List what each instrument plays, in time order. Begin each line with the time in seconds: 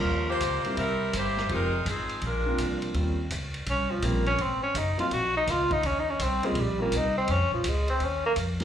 Already playing: grand piano F3 A#3 C#4 F4 C5, saxophone section G3 C#4 F4 A#4
0.04 upright bass D#2
0.29 saxophone section A#3 F4 G4 C5
0.40 upright bass C#2, kick, hi-hat pedal, ride
0.64 grand piano G3 A#3 C4 E4 G4, muted upright bass stroke, ride
0.77 upright bass C2, saxophone section G3 C4 E4 A#4, kick, ride
1.13 upright bass G1, saxophone section A#3 E4 G4 C5, kick, hi-hat pedal, ride
1.37 snare
1.49 upright bass F1, grand piano F3 G#3 C4 D#4 G4, saxophone section G#3 D#4 F4 A#4, kick, ride
1.86 upright bass G#1, saxophone section F3 C4 G#4, kick, hi-hat pedal, ride
1.90 saxophone section D#4
2.09 ride
2.21 upright bass A#1, saxophone section D4 A#4, kick, ride
2.26 saxophone section G#3 F4
2.45 grand piano F3 A#3 C4 D4 F4
2.58 upright bass C2, kick, hi-hat pedal, ride
2.82 ride
2.94 upright bass D#2, grand piano G3 A#3 C4 C#4 F4, kick, ride
3.30 upright bass C#2, kick, hi-hat pedal, ride
3.54 ride
3.66 upright bass C2, tenor saxophone C#4, kick, ride
3.91 tenor saxophone F3
4.02 upright bass A#1, grand piano G3 A#3 C4 C#4 F4, tenor saxophone A#3, kick, hi-hat pedal, ride
4.26 tenor saxophone C#4, ride
4.38 upright bass G#1, tenor saxophone C4, kick, ride
4.63 tenor saxophone C#4
4.74 upright bass F#1, tenor saxophone D#4, kick, hi-hat pedal, ride
4.98 grand piano F#3 A#3 C4 D#4 F4, tenor saxophone F4, muted upright bass stroke, ride
5.11 upright bass A#1, tenor saxophone F#4, kick, ride
5.37 tenor saxophone D#4
5.47 upright bass C#2, tenor saxophone F4, kick, snare, hi-hat pedal, ride
5.71 tenor saxophone D#4, kick, ride
5.83 upright bass D#2, tenor saxophone C#4, kick, ride
5.99 tenor saxophone D#4
6.10 tenor saxophone C#4
6.19 upright bass C2, tenor saxophone C4, kick, hi-hat pedal, ride
6.43 grand piano G3 A#3 C4 C#4 F4, tenor saxophone G#3, ride
6.55 upright bass A#1, kick, ride
6.60 tenor saxophone G3
6.79 grand piano G3 A#3 C4 C#4 F4, tenor saxophone A#3
6.92 upright bass C2, kick, hi-hat pedal, ride
6.97 tenor saxophone D#4
7.18 tenor saxophone C4
7.27 upright bass F2, tenor saxophone C#4, kick, ride
7.39 upright bass C#2
7.52 upright bass A#1, tenor saxophone F3
7.64 upright bass C#2, kick, hi-hat pedal, ride
7.68 tenor saxophone G#3
7.88 tenor saxophone C4, ride
8.00 upright bass D#2, kick, ride
8.05 tenor saxophone C#4
8.26 tenor saxophone A#3
8.36 upright bass F2, kick, hi-hat pedal, ride
8.60 grand piano F#3 A#3, snare, ride